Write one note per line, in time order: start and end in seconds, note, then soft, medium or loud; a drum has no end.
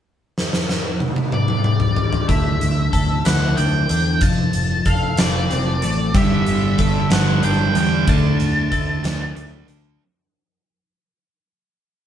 0.38 snare medium
0.53 snare medium
0.69 snare medium
1.00 high tom medium
1.16 high tom medium
1.32 2.25 D5 medium
1.32 mid tom medium
1.48 mid tom medium
1.64 mid tom medium
1.80 floor tom medium
1.96 floor tom medium
2.13 floor tom medium
2.28 2.58 D2 medium
2.28 3.89 D3 medium
2.28 3.21 E5 medium
2.28 kick medium
2.28 closed hi-hat medium
2.61 2.91 D2 medium
2.61 closed hi-hat medium
2.93 3.22 D2 medium
2.93 4.86 A4 medium
2.93 kick medium
2.93 closed hi-hat medium
3.25 3.55 D2 medium
3.25 4.22 E4 medium
3.25 3.57 F#5 medium
3.25 snare loud
3.25 closed hi-hat medium
3.57 3.87 D2 medium
3.57 4.22 D4 medium
3.57 4.22 G5 medium
3.57 closed hi-hat medium
3.89 4.19 E2 medium
3.89 4.22 D3 medium
3.89 closed hi-hat medium
4.21 4.51 F1 medium
4.21 5.83 F3 medium
4.21 4.88 A5 loud
4.21 kick loud
4.21 closed hi-hat medium
4.53 4.83 F1 medium
4.53 closed hi-hat medium
4.85 5.15 F1 medium
4.85 6.18 A4 medium
4.85 5.18 F5 loud
4.85 kick medium
4.85 closed hi-hat medium
5.17 5.47 F1 medium
5.17 6.15 F4 medium
5.17 6.15 D5 medium
5.17 snare loud
5.17 closed hi-hat loud
5.50 5.80 F1 medium
5.50 6.15 C4 medium
5.50 closed hi-hat medium
5.82 6.12 A1 medium
5.82 6.14 A3 medium
5.82 closed hi-hat medium
6.14 6.44 G1 medium
6.14 7.10 G2 medium
6.14 7.10 D3 medium
6.14 7.74 G3 medium
6.14 7.11 G3 medium
6.14 7.15 E5 medium
6.14 kick loud
6.14 closed hi-hat medium
6.46 6.76 G1 medium
6.46 closed hi-hat medium
6.78 7.08 G1 medium
6.78 8.71 A4 medium
6.78 kick medium
6.78 closed hi-hat medium
7.10 7.41 G1 medium
7.10 7.41 G2 medium
7.10 7.43 D3 loud
7.10 7.43 G3 loud
7.10 8.08 B3 medium
7.10 7.42 F#5 medium
7.10 snare loud
7.10 closed hi-hat medium
7.42 7.73 G1 medium
7.42 7.74 G2 medium
7.42 7.74 D3 medium
7.42 7.75 G3 loud
7.42 9.35 D4 medium
7.42 7.76 G5 medium
7.42 closed hi-hat medium
7.75 8.05 E2 medium
7.75 8.05 G2 medium
7.75 8.06 D3 medium
7.75 8.07 G3 medium
7.75 8.06 G3 medium
7.75 8.09 G5 medium
7.75 closed hi-hat medium
8.07 8.37 D2 medium
8.07 9.03 D3 medium
8.07 9.67 D3 medium
8.07 9.03 A3 medium
8.07 9.04 D4 loud
8.07 9.65 A5 medium
8.07 kick loud
8.07 closed hi-hat medium
8.39 8.69 D2 medium
8.39 closed hi-hat medium
8.72 9.01 D2 medium
8.72 10.00 A4 medium
8.72 kick medium
8.72 closed hi-hat medium
9.03 9.33 D2 medium
9.03 9.34 D3 medium
9.03 9.35 A3 loud
9.03 9.36 D4 loud
9.03 10.00 F#4 medium
9.03 snare loud
9.03 closed hi-hat medium
9.35 9.65 D2 medium
9.35 9.66 D3 medium
9.35 9.67 A3 medium
9.35 10.00 D4 medium
9.35 9.68 D4 medium
9.35 closed hi-hat medium
9.67 9.97 D2 medium
9.67 9.98 D3 medium
9.67 10.00 D3 medium
9.67 9.98 A3 medium
9.67 9.99 D4 medium
9.67 closed hi-hat medium